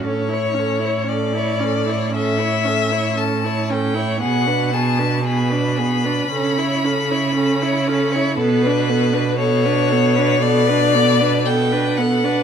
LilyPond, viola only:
\new Staff \with { instrumentName = "Viola" } { \time 4/4 \key a \mixolydian \tempo 4 = 58 cis'16 e'16 cis'16 e'16 cis'16 e'16 cis'16 e'16 cis'16 e'16 cis'16 e'16 cis'16 e'16 cis'16 e'16 | b16 d'16 b16 d'16 b16 d'16 b16 d'16 cis'16 e'16 cis'16 e'16 cis'16 e'16 cis'16 e'16 | b16 d'16 b16 d'16 b16 d'16 b16 d'16 b16 d'16 b16 d'16 b16 d'16 b16 d'16 | }